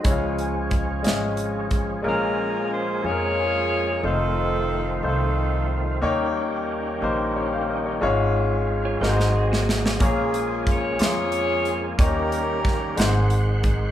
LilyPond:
<<
  \new Staff \with { instrumentName = "Saxophone section" } { \time 6/8 \key bes \minor \tempo 4. = 60 << { r2. | bes'4 c''8 des''4. | a'4. a'4 r8 | r2. |
r2. | aes'4 des''8 des''4. | bes'2 r4 | } \\ { r2. | <des' f'>4. <f' aes'>4. | <c' ees'>4. <c' ees'>4. | r2. |
r2. | <des' f'>4. <f' aes'>4. | <des' g'>2 r4 | } >> }
  \new Staff \with { instrumentName = "Clean electric guitar" } { \time 6/8 \key bes \minor r2. | r2. | r2. | r2. |
r4 r16 <f' des''>16 <ees' c''>16 bes'16 <c' aes'>16 <bes ges'>8. | r2. | r2. | }
  \new Staff \with { instrumentName = "Grand piano" } { \time 6/8 \key bes \minor << { r2. | r2. | r2. | r2 <g' des''>16 <c'' f''>16 <bes' ees''>16 <g' des''>16~ |
<g' des''>16 r2 r8. | r2. | r2. | } \\ { <aes des' fes' f' des''>4 r8 <aes des' f' ees''>4 r8 | <aes des' f' bes'>4 r8 <aes des' f' aes' bes'>4 r8 | <a ees' f' c''>4 r8 <a ees' f' c''>4 r8 | <bes ees' g' des''>4 r8 <bes ees' g' c''>4 r8 |
<aes des' f' des''>4 r8 <aes ees' ges' bes' c''>4 r8 | <bes f' aes' des''>4 r8 <bes f' aes' c'''>4 r8 | <bes ees' g' des''>4 r8 <aes ees' c'' ges''>4 r8 | } >> }
  \new Staff \with { instrumentName = "Grand piano" } { \clef bass \time 6/8 \key bes \minor des4. r4. | bes,4. r4. | r2. | ees4. r4. |
aes,4. aes,4. | bes,4. r4. | ees4. aes,4. | }
  \new Staff \with { instrumentName = "Tonewheel organ" } { \time 6/8 \key bes \minor << { <f aes des'>2~ <f aes des'>8 <f aes des'>8 | <aes aes'>2. | <f f'>2. | <g g'>2. |
f'4. aes'4.~ | aes'2. | <g g'>4. ges''4. | } \\ { r2. | <bes des'>2. | <a c'>2. | <bes des'>2. |
<aes des'>4. <c' ees'>4. | <bes des'>2. | <bes des'>4. <aes c''>4. | } >> }
  \new Staff \with { instrumentName = "Tonewheel organ" } { \clef bass \time 6/8 \key bes \minor r2. | f2. | ees2. | ees2. |
r4. ges4. | f2. | ees2. | }
  \new Staff \with { instrumentName = "Upright bass" } { \clef bass \time 6/8 \key bes \minor des,4. aes,,4. | bes,,4. f,4. | f,,4. c,4. | ees,4. bes,,4. |
aes,,4. aes,,4. | bes,,4. f,4. | ees,4. aes,,4. | }
  \new DrumStaff \with { instrumentName = "Drums" } \drummode { \time 6/8 <hh bd>8 hh8 <hh bd>8 <hh sn>8 hh8 <hh bd>8 | r4. r4. | r4. r4. | r4. r4. |
r4. sn16 sn8 sn16 sn16 sn16 | <hh bd>8 hh8 <hh bd>8 <hh sn>8 hh8 hh8 | <hh bd>8 hh8 <hh bd sn>8 <hh sn>8 hh8 <hh bd>8 | }
>>